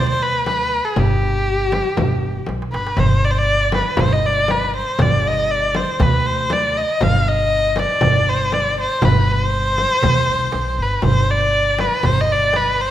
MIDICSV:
0, 0, Header, 1, 5, 480
1, 0, Start_track
1, 0, Tempo, 502934
1, 922, Time_signature, 4, 2, 24, 8
1, 12318, End_track
2, 0, Start_track
2, 0, Title_t, "Erhu"
2, 0, Program_c, 0, 110
2, 84, Note_on_c, 0, 72, 84
2, 213, Note_on_c, 0, 71, 87
2, 227, Note_off_c, 0, 72, 0
2, 447, Note_off_c, 0, 71, 0
2, 451, Note_on_c, 0, 71, 81
2, 808, Note_on_c, 0, 68, 70
2, 822, Note_off_c, 0, 71, 0
2, 944, Note_on_c, 0, 67, 78
2, 959, Note_off_c, 0, 68, 0
2, 2377, Note_off_c, 0, 67, 0
2, 2602, Note_on_c, 0, 71, 69
2, 2859, Note_on_c, 0, 72, 79
2, 2874, Note_off_c, 0, 71, 0
2, 3099, Note_on_c, 0, 74, 81
2, 3114, Note_off_c, 0, 72, 0
2, 3157, Note_on_c, 0, 72, 69
2, 3171, Note_off_c, 0, 74, 0
2, 3227, Note_on_c, 0, 74, 91
2, 3241, Note_off_c, 0, 72, 0
2, 3571, Note_off_c, 0, 74, 0
2, 3575, Note_on_c, 0, 71, 74
2, 3825, Note_on_c, 0, 72, 81
2, 3839, Note_off_c, 0, 71, 0
2, 3940, Note_on_c, 0, 75, 76
2, 3954, Note_off_c, 0, 72, 0
2, 4064, Note_on_c, 0, 74, 86
2, 4079, Note_off_c, 0, 75, 0
2, 4303, Note_on_c, 0, 71, 79
2, 4317, Note_off_c, 0, 74, 0
2, 4535, Note_off_c, 0, 71, 0
2, 4542, Note_on_c, 0, 72, 77
2, 4787, Note_on_c, 0, 74, 82
2, 4801, Note_off_c, 0, 72, 0
2, 5033, Note_on_c, 0, 75, 87
2, 5047, Note_off_c, 0, 74, 0
2, 5256, Note_on_c, 0, 74, 85
2, 5271, Note_off_c, 0, 75, 0
2, 5502, Note_on_c, 0, 72, 77
2, 5516, Note_off_c, 0, 74, 0
2, 5747, Note_on_c, 0, 71, 85
2, 5762, Note_off_c, 0, 72, 0
2, 5978, Note_on_c, 0, 72, 91
2, 5992, Note_off_c, 0, 71, 0
2, 6232, Note_on_c, 0, 74, 82
2, 6246, Note_off_c, 0, 72, 0
2, 6465, Note_on_c, 0, 75, 84
2, 6480, Note_off_c, 0, 74, 0
2, 6708, Note_on_c, 0, 77, 87
2, 6722, Note_off_c, 0, 75, 0
2, 6949, Note_on_c, 0, 75, 97
2, 6963, Note_off_c, 0, 77, 0
2, 7436, Note_on_c, 0, 74, 87
2, 7450, Note_off_c, 0, 75, 0
2, 7914, Note_on_c, 0, 72, 87
2, 7928, Note_off_c, 0, 74, 0
2, 8149, Note_on_c, 0, 74, 82
2, 8163, Note_off_c, 0, 72, 0
2, 8378, Note_off_c, 0, 74, 0
2, 8403, Note_on_c, 0, 72, 83
2, 8638, Note_on_c, 0, 71, 81
2, 8652, Note_off_c, 0, 72, 0
2, 8892, Note_off_c, 0, 71, 0
2, 8892, Note_on_c, 0, 71, 97
2, 8997, Note_off_c, 0, 71, 0
2, 8997, Note_on_c, 0, 72, 97
2, 10333, Note_on_c, 0, 71, 78
2, 10347, Note_off_c, 0, 72, 0
2, 10546, Note_off_c, 0, 71, 0
2, 10552, Note_on_c, 0, 72, 90
2, 10791, Note_on_c, 0, 74, 93
2, 10805, Note_off_c, 0, 72, 0
2, 11269, Note_on_c, 0, 71, 82
2, 11283, Note_off_c, 0, 74, 0
2, 11509, Note_on_c, 0, 72, 90
2, 11523, Note_off_c, 0, 71, 0
2, 11652, Note_on_c, 0, 75, 83
2, 11666, Note_off_c, 0, 72, 0
2, 11759, Note_on_c, 0, 74, 86
2, 11773, Note_off_c, 0, 75, 0
2, 11993, Note_on_c, 0, 71, 87
2, 12007, Note_off_c, 0, 74, 0
2, 12230, Note_on_c, 0, 72, 85
2, 12244, Note_off_c, 0, 71, 0
2, 12318, Note_off_c, 0, 72, 0
2, 12318, End_track
3, 0, Start_track
3, 0, Title_t, "Upright bass"
3, 0, Program_c, 1, 32
3, 0, Note_on_c, 1, 38, 82
3, 757, Note_off_c, 1, 38, 0
3, 923, Note_on_c, 1, 31, 87
3, 1714, Note_off_c, 1, 31, 0
3, 1889, Note_on_c, 1, 31, 83
3, 2282, Note_off_c, 1, 31, 0
3, 2369, Note_on_c, 1, 35, 68
3, 2584, Note_off_c, 1, 35, 0
3, 2609, Note_on_c, 1, 31, 69
3, 2824, Note_off_c, 1, 31, 0
3, 2843, Note_on_c, 1, 31, 87
3, 3635, Note_off_c, 1, 31, 0
3, 3809, Note_on_c, 1, 31, 86
3, 4598, Note_off_c, 1, 31, 0
3, 4764, Note_on_c, 1, 31, 97
3, 5555, Note_off_c, 1, 31, 0
3, 5728, Note_on_c, 1, 38, 103
3, 6517, Note_off_c, 1, 38, 0
3, 6697, Note_on_c, 1, 31, 91
3, 7483, Note_off_c, 1, 31, 0
3, 7663, Note_on_c, 1, 31, 82
3, 8446, Note_off_c, 1, 31, 0
3, 8617, Note_on_c, 1, 31, 94
3, 9402, Note_off_c, 1, 31, 0
3, 9577, Note_on_c, 1, 38, 93
3, 9770, Note_off_c, 1, 38, 0
3, 9823, Note_on_c, 1, 36, 80
3, 10032, Note_off_c, 1, 36, 0
3, 10061, Note_on_c, 1, 35, 75
3, 10271, Note_off_c, 1, 35, 0
3, 10294, Note_on_c, 1, 31, 69
3, 10507, Note_off_c, 1, 31, 0
3, 10534, Note_on_c, 1, 31, 82
3, 11319, Note_off_c, 1, 31, 0
3, 11499, Note_on_c, 1, 31, 85
3, 12281, Note_off_c, 1, 31, 0
3, 12318, End_track
4, 0, Start_track
4, 0, Title_t, "Darbuka"
4, 210, Note_on_c, 9, 62, 22
4, 305, Note_off_c, 9, 62, 0
4, 448, Note_on_c, 9, 63, 60
4, 543, Note_off_c, 9, 63, 0
4, 925, Note_on_c, 9, 64, 73
4, 1020, Note_off_c, 9, 64, 0
4, 1646, Note_on_c, 9, 63, 64
4, 1742, Note_off_c, 9, 63, 0
4, 1890, Note_on_c, 9, 64, 75
4, 1986, Note_off_c, 9, 64, 0
4, 2374, Note_on_c, 9, 63, 49
4, 2470, Note_off_c, 9, 63, 0
4, 2502, Note_on_c, 9, 62, 58
4, 2597, Note_off_c, 9, 62, 0
4, 2617, Note_on_c, 9, 63, 71
4, 2713, Note_off_c, 9, 63, 0
4, 2735, Note_on_c, 9, 62, 77
4, 2831, Note_off_c, 9, 62, 0
4, 2854, Note_on_c, 9, 64, 88
4, 2950, Note_off_c, 9, 64, 0
4, 3572, Note_on_c, 9, 63, 65
4, 3668, Note_off_c, 9, 63, 0
4, 3810, Note_on_c, 9, 64, 89
4, 3905, Note_off_c, 9, 64, 0
4, 4296, Note_on_c, 9, 63, 61
4, 4391, Note_off_c, 9, 63, 0
4, 4535, Note_on_c, 9, 62, 29
4, 4631, Note_off_c, 9, 62, 0
4, 4649, Note_on_c, 9, 62, 27
4, 4745, Note_off_c, 9, 62, 0
4, 4765, Note_on_c, 9, 64, 89
4, 4861, Note_off_c, 9, 64, 0
4, 5726, Note_on_c, 9, 64, 85
4, 5821, Note_off_c, 9, 64, 0
4, 6212, Note_on_c, 9, 63, 61
4, 6307, Note_off_c, 9, 63, 0
4, 6451, Note_on_c, 9, 62, 30
4, 6547, Note_off_c, 9, 62, 0
4, 6576, Note_on_c, 9, 62, 30
4, 6672, Note_off_c, 9, 62, 0
4, 6703, Note_on_c, 9, 64, 82
4, 6798, Note_off_c, 9, 64, 0
4, 7415, Note_on_c, 9, 63, 65
4, 7510, Note_off_c, 9, 63, 0
4, 7650, Note_on_c, 9, 64, 89
4, 7746, Note_off_c, 9, 64, 0
4, 8135, Note_on_c, 9, 63, 60
4, 8230, Note_off_c, 9, 63, 0
4, 8378, Note_on_c, 9, 62, 25
4, 8473, Note_off_c, 9, 62, 0
4, 8607, Note_on_c, 9, 64, 95
4, 8703, Note_off_c, 9, 64, 0
4, 8851, Note_on_c, 9, 62, 24
4, 8947, Note_off_c, 9, 62, 0
4, 9204, Note_on_c, 9, 62, 23
4, 9299, Note_off_c, 9, 62, 0
4, 9445, Note_on_c, 9, 62, 26
4, 9540, Note_off_c, 9, 62, 0
4, 9568, Note_on_c, 9, 64, 89
4, 9663, Note_off_c, 9, 64, 0
4, 9809, Note_on_c, 9, 62, 22
4, 9904, Note_off_c, 9, 62, 0
4, 10042, Note_on_c, 9, 63, 63
4, 10137, Note_off_c, 9, 63, 0
4, 10293, Note_on_c, 9, 62, 26
4, 10389, Note_off_c, 9, 62, 0
4, 10530, Note_on_c, 9, 64, 88
4, 10625, Note_off_c, 9, 64, 0
4, 11248, Note_on_c, 9, 63, 71
4, 11343, Note_off_c, 9, 63, 0
4, 11489, Note_on_c, 9, 64, 81
4, 11585, Note_off_c, 9, 64, 0
4, 11959, Note_on_c, 9, 63, 61
4, 12054, Note_off_c, 9, 63, 0
4, 12199, Note_on_c, 9, 62, 24
4, 12295, Note_off_c, 9, 62, 0
4, 12318, End_track
5, 0, Start_track
5, 0, Title_t, "Frame drum"
5, 442, Note_on_c, 9, 64, 64
5, 538, Note_off_c, 9, 64, 0
5, 918, Note_on_c, 9, 64, 89
5, 1014, Note_off_c, 9, 64, 0
5, 1643, Note_on_c, 9, 64, 67
5, 1738, Note_off_c, 9, 64, 0
5, 1881, Note_on_c, 9, 64, 92
5, 1977, Note_off_c, 9, 64, 0
5, 2352, Note_on_c, 9, 64, 65
5, 2448, Note_off_c, 9, 64, 0
5, 2832, Note_on_c, 9, 64, 86
5, 2927, Note_off_c, 9, 64, 0
5, 3552, Note_on_c, 9, 64, 73
5, 3648, Note_off_c, 9, 64, 0
5, 3788, Note_on_c, 9, 64, 97
5, 3883, Note_off_c, 9, 64, 0
5, 4277, Note_on_c, 9, 64, 72
5, 4372, Note_off_c, 9, 64, 0
5, 4760, Note_on_c, 9, 64, 98
5, 4855, Note_off_c, 9, 64, 0
5, 5483, Note_on_c, 9, 64, 80
5, 5579, Note_off_c, 9, 64, 0
5, 5724, Note_on_c, 9, 64, 92
5, 5819, Note_off_c, 9, 64, 0
5, 6203, Note_on_c, 9, 64, 72
5, 6298, Note_off_c, 9, 64, 0
5, 6687, Note_on_c, 9, 64, 91
5, 6783, Note_off_c, 9, 64, 0
5, 7404, Note_on_c, 9, 64, 69
5, 7499, Note_off_c, 9, 64, 0
5, 7644, Note_on_c, 9, 64, 92
5, 7739, Note_off_c, 9, 64, 0
5, 8133, Note_on_c, 9, 64, 68
5, 8229, Note_off_c, 9, 64, 0
5, 8609, Note_on_c, 9, 64, 95
5, 8704, Note_off_c, 9, 64, 0
5, 9334, Note_on_c, 9, 64, 70
5, 9429, Note_off_c, 9, 64, 0
5, 9574, Note_on_c, 9, 64, 92
5, 9669, Note_off_c, 9, 64, 0
5, 10046, Note_on_c, 9, 64, 66
5, 10141, Note_off_c, 9, 64, 0
5, 10518, Note_on_c, 9, 64, 84
5, 10614, Note_off_c, 9, 64, 0
5, 11248, Note_on_c, 9, 64, 73
5, 11344, Note_off_c, 9, 64, 0
5, 11484, Note_on_c, 9, 64, 89
5, 11579, Note_off_c, 9, 64, 0
5, 11965, Note_on_c, 9, 64, 66
5, 12060, Note_off_c, 9, 64, 0
5, 12318, End_track
0, 0, End_of_file